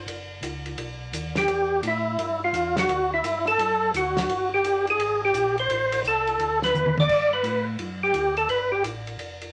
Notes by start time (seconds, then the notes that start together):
0.06 F#1, ride
0.42 C#2, hi-hat pedal, ride
0.66 ride
0.78 B1, ride
1.13 D#2, hi-hat pedal, ride
1.35 G4, snare, ride
1.48 E2, ride
1.83 A2, hi-hat pedal, ride
1.88 E4
2.18 G2, ride
2.44 F4
2.53 E2, hi-hat pedal, ride
2.76 F#4, snare, ride
2.88 D2, ride
3.14 E4
3.23 G2, hi-hat pedal, ride
3.47 A4, ride
3.58 F#2, ride
3.93 D2 F#4, hi-hat pedal, ride
4.17 snare, ride
4.29 G1, ride
4.54 G4
4.63 F#1, hi-hat pedal, ride
4.87 G#4, ride
4.98 G#1, ride
5.25 G4
5.34 A#1, hi-hat pedal, ride
5.58 C5, ride
5.69 A1, ride
5.92 ride
6.03 C2, hi-hat pedal
6.08 A4
6.27 ride
6.39 D2, ride
6.62 B4, snare
6.74 E2, hi-hat pedal, high tom
6.86 high tom
6.98 D5, high tom
7.09 G2, kick, crash
7.33 B4
7.43 A2, hi-hat pedal, ride
7.78 F#2, ride
8.03 G4
8.13 D2, hi-hat pedal, ride
8.37 A4, ride
8.48 G1 B4, ride
8.72 G4
8.82 A1, hi-hat pedal, ride
9.07 ride
9.18 F1, ride
9.41 ride